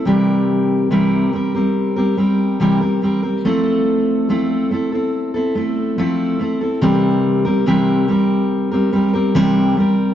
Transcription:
X:1
M:4/4
L:1/16
Q:1/4=71
K:Cmix
V:1 name="Steel-string acoustic guitar"
[C,E,G,CGB]4 [C,E,G,CGB]2 [G,CGB] [G,CGB]2 [G,CGB] [G,CGB]2 [C,E,G,CGB] [G,CGB] [G,CGB] [G,CGB] | [F,A,CEA]4 [F,A,CEA]2 [A,CEA] [CEA]2 [CEA] [A,CEA]2 [F,A,CEA]2 [A,CEA] [CEA] | [C,E,G,CGB]3 [G,CGB] [C,E,G,CGB]2 [G,CGB]3 [G,CGB] [G,CGB] [G,CGB] [C,E,G,CGB]2 [G,CGB]2 |]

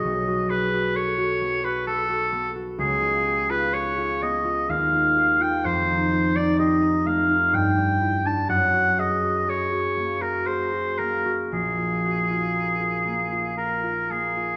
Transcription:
X:1
M:3/4
L:1/16
Q:1/4=62
K:Bmix
V:1 name="Oboe"
d2 B2 c3 B A3 z | [K:Bbm] A3 _c d2 e2 f3 =g | c3 =d e2 f2 =g3 =a | g2 e2 d3 B c2 B2 |
A8 B2 A2 |]
V:2 name="Harp"
[B,,,B,F] F G F A F B, F A F B, F | [K:Bbm] D,, F =G F A F _C F E,, F G F | F,, E F E =G E =A, E =G,, =D _F D | G,, G A G A G B, G A G B, G |
B,,, F G F B F B, F B F B, F |]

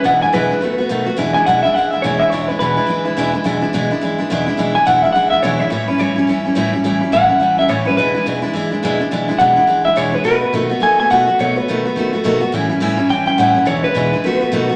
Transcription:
X:1
M:4/4
L:1/8
Q:"Swing" 1/4=212
K:Emix
V:1 name="Clean electric guitar"
f g B6 | z g f e f e c e | c B B6 | z8 |
z g f e f e c e | c B c6 | z2 f3 e c B | B2 z6 |
z2 f3 e c B | B2 z2 g g f2 | c B6 z | z4 =g g f2 |
c B6 z |]
V:2 name="Steel-string acoustic guitar"
[E,,B,,E,G,DE] [E,G,DE] [E,,B,,E,G,DE] [E,G,DE] [^D,A,B,F] [A,B,F] [B,,D,A,B,F] [A,B,F] | [E,,B,,E,G,DE] [E,G,DE] [E,,B,,E,G,DE] [E,G,DE] [E,G,DE] [E,G,DE] [E,,B,,E,G,DE] [E,G,DE] | [E,,B,,E,G,DE] [E,G,DE] [E,,B,,E,G,DE] [E,G,DE] [E,G,DE] [E,G,DE] [E,,B,,E,G,DE] [G,DE] | [E,,B,,E,G,DE] [E,G,DE] [E,,B,,E,G,DE] [E,G,DE] [E,G,DE] [E,G,DE] [E,,B,,E,G,DE] [E,G,DE] |
[E,,B,,E,G,DE] [E,G,DE] [E,,B,,E,G,DE] [E,G,DE] [E,G,DE] [E,G,DE] [E,,B,,E,G,DE] [E,G,DE] | [A,,E,=G,CE] [G,CE] [A,,E,G,CE] [G,CE] [E,G,CE] [G,CE] [A,,E,G,CE] [G,CE] | [A,,E,=G,CE] [G,CE] [A,,E,G,CE] [G,CE] [E,G,CE] [G,CE] [A,,E,G,CE] [G,CE] | [E,,B,,E,G,DE] [E,G,DE] [E,,B,,E,G,DE] [E,G,DE] [E,G,DE] [E,G,DE] [E,,B,,E,G,DE] [E,G,DE] |
[E,,B,,E,G,DE] [E,G,DE] [E,,B,,E,G,DE] [E,G,DE] [E,G,DE] [E,G,DE] [E,,B,,E,G,DE] [E,G,DE] | [B,,^D,A,B,F] [A,B,F] [B,,D,A,B,F] [A,B,F] [D,A,B,F] [A,B,F] [B,,D,A,B,F] [A,B,F] | [B,,^D,A,B,F] [A,B,F] [B,,D,A,B,F] [A,B,F] [D,A,B,F] [A,B,F] [B,,D,A,B,F] [A,B,F] | [A,,E,=G,CE] [G,CE] [A,,E,G,CE] [G,CE] [E,G,CE] [G,CE] [A,,E,G,CE] [G,CE] |
[E,,B,,E,G,DE] [E,G,DE] [E,,B,,E,G,DE] [E,G,DE] [^D,A,B,F] [A,B,F] [B,,D,A,B,F] [A,B,F] |]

